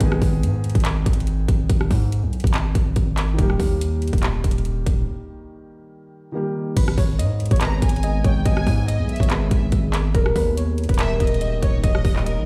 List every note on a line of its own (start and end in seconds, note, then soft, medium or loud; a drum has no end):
0.00 0.21 G#1 loud
0.00 3.32 D#3 medium
0.00 3.34 G#3 medium
0.00 3.36 B3 medium
0.00 kick loud
0.00 closed hi-hat medium
0.06 3.37 G#4 medium
0.12 cross-stick loud
0.22 0.44 G#1 loud
0.22 kick medium
0.22 open hi-hat medium
0.43 0.73 G#2 loud
0.43 closed hi-hat medium
0.64 closed hi-hat medium
0.70 closed hi-hat medium
0.75 1.05 G#1 loud
0.75 kick loud
0.75 closed hi-hat medium
0.80 closed hi-hat medium
0.85 clap loud
0.85 closed hi-hat medium
1.06 1.47 G#1 loud
1.06 kick loud
1.06 closed hi-hat medium
1.13 closed hi-hat medium
1.20 closed hi-hat soft
1.27 closed hi-hat medium
1.48 1.69 G#1 loud
1.48 kick loud
1.48 closed hi-hat medium
1.70 1.90 G#1 loud
1.70 kick loud
1.70 closed hi-hat medium
1.81 cross-stick medium
1.91 2.24 G#2 loud
1.91 kick medium
1.91 open hi-hat medium
2.12 closed hi-hat medium
2.23 2.43 B1 loud
2.33 closed hi-hat soft
2.40 closed hi-hat medium
2.44 2.74 G#1 loud
2.44 kick loud
2.44 closed hi-hat medium
2.54 clap loud
2.54 closed hi-hat medium
2.75 2.95 G#1 loud
2.75 kick loud
2.75 closed hi-hat medium
2.96 3.37 G#1 loud
2.96 kick medium
2.96 closed hi-hat medium
3.17 clap loud
3.17 closed hi-hat medium
3.34 6.28 D#3 medium
3.34 6.30 G3 medium
3.39 3.59 D#1 loud
3.39 6.31 A#3 medium
3.39 kick loud
3.39 closed hi-hat medium
3.43 6.33 G4 medium
3.50 cross-stick medium
3.60 4.11 D#2 loud
3.60 kick medium
3.60 open hi-hat medium
3.81 closed hi-hat medium
4.02 closed hi-hat medium
4.08 closed hi-hat medium
4.13 4.43 D#1 loud
4.13 kick loud
4.13 closed hi-hat medium
4.18 closed hi-hat medium
4.23 clap loud
4.23 closed hi-hat medium
4.44 4.85 D#1 loud
4.44 kick medium
4.44 closed hi-hat medium
4.51 closed hi-hat medium
4.58 closed hi-hat soft
4.65 closed hi-hat medium
4.86 5.07 D#1 loud
4.86 kick loud
4.86 closed hi-hat medium
6.32 6.75 D#3 medium
6.32 6.76 G3 soft
6.32 6.77 A#3 soft
6.37 6.78 G4 medium
6.77 6.97 G#1 loud
6.77 12.46 D#3 medium
6.77 10.11 G#3 medium
6.77 10.11 B3 medium
6.77 10.11 G#4 medium
6.77 7.61 B4 medium
6.77 kick loud
6.77 closed hi-hat medium
6.77 crash loud
6.88 cross-stick loud
6.97 7.20 G#1 loud
6.97 7.51 C#5 medium
6.97 kick loud
6.97 open hi-hat medium
7.19 7.50 G#2 loud
7.19 8.03 D#5 medium
7.19 closed hi-hat medium
7.40 closed hi-hat medium
7.46 closed hi-hat medium
7.51 7.81 G#1 loud
7.51 8.24 C#5 medium
7.51 kick loud
7.51 closed hi-hat medium
7.56 closed hi-hat medium
7.61 9.30 B4 medium
7.61 7.81 A#5 loud
7.61 clap loud
7.61 closed hi-hat medium
7.82 8.23 G#1 loud
7.82 8.22 G#5 medium
7.82 kick loud
7.82 closed hi-hat medium
7.89 closed hi-hat medium
7.96 closed hi-hat soft
8.03 8.45 D#5 loud
8.03 closed hi-hat medium
8.24 8.45 G#1 loud
8.24 9.20 C#5 medium
8.24 8.45 G5 medium
8.24 kick loud
8.24 closed hi-hat medium
8.46 8.66 G#1 loud
8.46 8.87 D#5 loud
8.46 8.85 G#5 loud
8.46 kick loud
8.46 closed hi-hat medium
8.57 cross-stick loud
8.67 9.01 G#2 loud
8.67 kick loud
8.67 open hi-hat medium
8.88 10.66 D#5 medium
8.88 9.08 D#5 medium
8.88 closed hi-hat medium
8.99 9.19 B1 loud
9.09 9.29 E5 loud
9.09 closed hi-hat soft
9.16 closed hi-hat medium
9.20 9.50 G#1 loud
9.20 10.57 C#5 medium
9.20 kick loud
9.20 closed hi-hat medium
9.30 10.21 B4 medium
9.30 clap loud
9.30 closed hi-hat medium
9.51 9.71 G#1 loud
9.51 kick loud
9.51 closed hi-hat medium
9.72 10.13 G#1 loud
9.72 kick medium
9.72 closed hi-hat medium
9.93 clap loud
9.93 closed hi-hat medium
10.15 10.35 D#1 loud
10.15 12.46 G3 medium
10.15 12.46 A#3 medium
10.15 12.46 G4 medium
10.15 10.42 A#4 loud
10.15 kick loud
10.15 closed hi-hat medium
10.26 cross-stick loud
10.36 10.87 D#2 loud
10.36 10.89 B4 medium
10.36 kick medium
10.36 open hi-hat medium
10.57 11.62 C#5 medium
10.57 closed hi-hat medium
10.78 closed hi-hat medium
10.84 closed hi-hat medium
10.89 11.19 D#1 loud
10.89 11.05 B4 medium
10.89 kick loud
10.89 closed hi-hat medium
10.94 closed hi-hat medium
10.99 12.46 A#4 medium
10.99 11.19 E5 loud
10.99 clap loud
10.99 closed hi-hat medium
11.20 11.61 D#1 loud
11.20 11.60 D#5 medium
11.20 kick loud
11.20 closed hi-hat medium
11.27 closed hi-hat medium
11.34 closed hi-hat soft
11.41 11.83 D#5 medium
11.41 closed hi-hat medium
11.62 11.83 D#1 loud
11.62 11.82 C#5 loud
11.62 12.46 C#5 medium
11.62 kick loud
11.62 closed hi-hat medium
11.84 12.04 D#1 loud
11.84 12.23 D#5 loud
11.84 12.25 D#5 loud
11.84 kick loud
11.84 closed hi-hat medium
11.95 cross-stick loud
12.05 12.39 D#1 loud
12.05 kick loud
12.05 open hi-hat medium
12.16 clap medium
12.26 12.46 A#4 medium
12.26 12.46 D#5 medium
12.26 closed hi-hat medium
12.37 12.46 A#1 loud